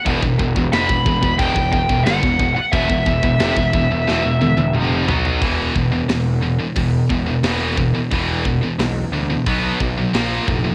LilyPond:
<<
  \new Staff \with { instrumentName = "Lead electric guitar" } { \time 4/4 \key b \phrygian \tempo 4 = 89 r4 b''4 g''8 g''8 fis''8. fis''16 | e''2. r4 | r1 | r1 | }
  \new Staff \with { instrumentName = "Distorted electric guitar" } { \clef bass \time 4/4 \key b \phrygian <e, b,>16 <e, b,>16 <e, b,>16 <e, b,>16 <f, c>16 <e, b,>16 <e, b,>16 <e, b,>16 <e, b,>16 <e, b,>16 <e, b,>16 <e, b,>16 <g, d>16 <e, b,>16 <e, b,>16 r16 | <e, b,>16 <e, b,>16 <e, b,>16 <e, b,>16 <f, c>16 <e, b,>16 <e, b,>16 <e, b,>16 <e, b,>16 <e, b,>16 <e, b,>16 <e, b,>16 <f, c f>8 <b, fis b>8 | <e, b, e>8 <e, b,>16 <e, b,>16 <e, b,>8 <e, b,>16 <e, b,>16 <e, b,>8 <e, b,>16 <e, b,>16 <e, b, e>8 <e, b,>16 <e, b,>16 | <e, b, e>8 <e, b,>16 <e, b,>16 <e, b,>8 <e, b,>16 <e, b,>16 <b, fis b>8 <b, fis>16 <b, fis>16 <ais, eis ais>8 <ais, eis>16 <ais, eis>16 | }
  \new Staff \with { instrumentName = "Distorted electric guitar" } { \clef bass \time 4/4 \key b \phrygian <e, b,>16 <e, b,>16 <e, b,>16 <e, b,>16 <f, c>16 <e, b,>16 <e, b,>16 <e, b,>16 <e, b,>16 <e, b,>16 <e, b,>16 <e, b,>16 <g, d>16 <e, b,>16 <e, b,>16 r16 | <e, b,>16 <e, b,>16 <e, b,>16 <e, b,>16 <f, c>16 <e, b,>16 <e, b,>16 <e, b,>16 <e, b,>16 <e, b,>16 <e, b,>16 <e, b,>16 <f, c f>8 <b, fis b>8 | <e, b, e>8 <e, b,>16 <e, b,>16 <e, b,>8 <e, b,>16 <e, b,>16 <e, b,>8 <e, b,>16 <e, b,>16 <e, b, e>8 <e, b,>16 <e, b,>16 | <e, b, e>8 <e, b,>16 <e, b,>16 <e, b,>8 <e, b,>16 <e, b,>16 <b, fis b>8 <b, fis>16 <b, fis>16 <ais, eis ais>8 <ais, eis>16 <ais, eis>16 | }
  \new Staff \with { instrumentName = "Distorted electric guitar" } { \clef bass \time 4/4 \key b \phrygian <e, b,>16 <e, b,>16 <e, b,>16 <e, b,>16 <f, c>16 <e, b,>16 <e, b,>16 <e, b,>16 <e, b,>16 <e, b,>16 <e, b,>16 <e, b,>16 <g, d>16 <e, b,>16 <e, b,>16 r16 | <e, b,>16 <e, b,>16 <e, b,>16 <e, b,>16 <f, c>16 <e, b,>16 <e, b,>16 <e, b,>16 <e, b,>16 <e, b,>16 <e, b,>16 <e, b,>16 <f, c f>8 <b, fis b>8 | r1 | r1 | }
  \new Staff \with { instrumentName = "Picked electric bass" } { \clef bass \time 4/4 \key b \phrygian e,,16 e,,16 e,,16 e,,16 f,,16 e,,16 e,,16 e,,16 e,,16 e,,16 e,,16 e,,16 g,,16 e,,16 e,,16 r16 | e,,16 e,,16 e,,16 e,,16 f,,16 e,,16 e,,16 e,,16 e,,16 e,,16 e,,16 e,,16 f,,8 b,,8 | e,,8 e,,8 e,,4 e,,8 e,,8 e,,4 | e,,4 b,,8 d,8 b,,8 b,,8 ais,,8 eis,,8 | }
  \new DrumStaff \with { instrumentName = "Drums" } \drummode { \time 4/4 <cymc bd>16 bd16 bd16 bd16 <cymc sn>16 bd16 bd16 bd16 <cymc bd>16 bd16 bd16 bd16 <cymc sn>16 bd16 bd8 | <cymc bd>16 bd16 bd16 bd16 <cymc sn>16 bd16 bd8 sn8 tommh16 tommh16 toml8 tomfh16 tomfh16 | <hho bd>8 bd8 <hho sn>4 <hho bd>8 bd8 <hho sn>8 bd8 | <hho bd>8 bd8 <hho sn>4 <hho bd>8 bd8 <hho sn>8 bd8 | }
>>